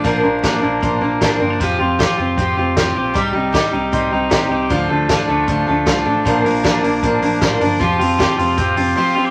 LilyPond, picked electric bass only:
\new Staff \with { instrumentName = "Picked electric bass" } { \clef bass \time 4/4 \key bes \major \tempo 4 = 155 bes,,8 bes,,8. r16 bes,,8 bes,,8 bes,,8 a,,8 g,,8 | f,,8 f,,8. r16 f,,8 f,,8 f,,8 f,,8 bes,,8 | c,8 c,8. r16 c,8 c,8 c,8 bes,,8 c,8 | d,8 d,8. r16 d,8 d,8 d,8 c,8 a,,8 |
bes,,8 bes,,8. r16 bes,,8 bes,,8 bes,,8 a,,8 g,,8 | f,,8 f,,8. r16 f,,8 f,,8 f,,8 r4 | }